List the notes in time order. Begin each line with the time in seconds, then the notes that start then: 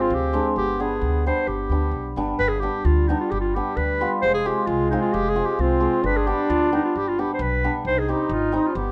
Already playing: G#1 G#3 C4
0.01 F4
0.10 D2 G4
0.33 G#3 C4 D4
0.56 G1 B3 G4
0.80 G3 B3 D4 G#4
1.01 D2
1.26 G3 B3 D4 C5
1.47 G1 B3 G4
1.70 D2 G3 B3 D4
1.92 B1
2.16 G1 G3 B3 D4
2.39 G1 G3 B4
2.48 G#4
2.60 G3 B3 D4 G4
2.85 D2 F4
3.08 G3 B3 D4 D#4
3.20 F4
3.29 G1 G4 G#4
3.41 F4
3.55 G3 B3 D4 G4
3.77 D2 B4
4.01 G3 B3 F4
4.22 F1 G#3 C5
4.34 G#4
4.45 G#3 C4 F4 G4
4.66 C2 F4
4.90 G#3 C4 D#4 F4
5.02 F4
5.13 F1 G4
5.29 G#4
5.36 G#3 C4 F4
5.45 G4
5.59 C2 C4 F4
5.80 G#3 C4 G4
6.04 G1 D4 B4
6.17 G#4
6.27 G3 B3 D4 G4
6.50 D2 F4
6.72 G3 B3 D4 D#4
6.85 F4
6.96 G1 G4
7.08 F4
7.18 G3 B3 D4 G4
7.34 C5
7.39 B1 B4
7.64 G3 B3 D4
7.85 C2 D#4 C5
7.99 G#4
8.08 G3 C4 D#4 G4
8.30 G#1 F4
8.52 G3 C4 D#4
8.66 F4
8.75 G1 B3 G4